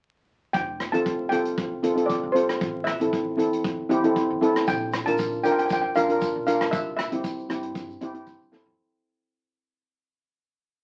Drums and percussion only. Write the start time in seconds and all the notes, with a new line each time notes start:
0.54 kick, closed hi-hat
0.80 cross-stick, closed hi-hat
0.94 closed hi-hat
1.06 kick, closed hi-hat
1.32 closed hi-hat
1.45 closed hi-hat
1.58 kick, closed hi-hat
1.84 closed hi-hat
1.97 closed hi-hat
2.10 kick, closed hi-hat
2.36 closed hi-hat
2.49 cross-stick, closed hi-hat
2.61 kick, closed hi-hat
2.87 cross-stick, closed hi-hat
3.01 closed hi-hat
3.13 kick, closed hi-hat
3.39 closed hi-hat
3.53 closed hi-hat
3.64 kick, closed hi-hat
3.91 closed hi-hat
4.04 closed hi-hat
4.16 kick, closed hi-hat
4.42 closed hi-hat
4.56 cross-stick, closed hi-hat
4.67 kick, closed hi-hat, shaker
4.93 cross-stick, closed hi-hat, shaker
5.07 closed hi-hat
5.17 kick, closed hi-hat, shaker
5.44 closed hi-hat, shaker
5.57 closed hi-hat, shaker
5.69 kick, closed hi-hat, shaker
5.95 closed hi-hat, shaker
6.09 closed hi-hat, shaker
6.21 kick, closed hi-hat, shaker
6.47 closed hi-hat, shaker
6.61 cross-stick, closed hi-hat
6.73 kick, closed hi-hat, shaker
6.99 cross-stick, closed hi-hat, shaker
7.12 closed hi-hat
7.24 kick, closed hi-hat, shaker
7.38 shaker
7.50 cross-stick, closed hi-hat, shaker
7.63 closed hi-hat
7.75 kick, closed hi-hat, shaker
7.89 shaker
8.01 closed hi-hat, shaker
8.14 closed hi-hat
8.27 kick, closed hi-hat, shaker
8.41 shaker
8.53 snare, shaker
8.66 floor tom